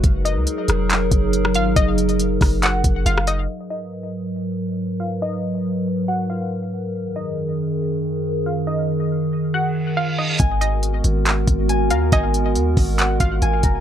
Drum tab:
HH |x-x-x-x-x-x-x-x-|x-xxx-o-x-x-x-x-|----------------|----------------|
CP |--------x-------|--------x-------|----------------|----------------|
SD |------r------r--|------r------r--|----------------|----------------|
BD |o---------o-----|o-----o---o-----|----------------|----------------|

HH |----------------|----------------|x-x-x-x-x-x-x-x-|x-x-x-o-x-x-x-x-|
CP |----------------|----------------|--------x-------|--------x-------|
SD |----------------|----------------|----------------|----------------|
BD |----------------|----------------|o---------o-----|o-----o---o---o-|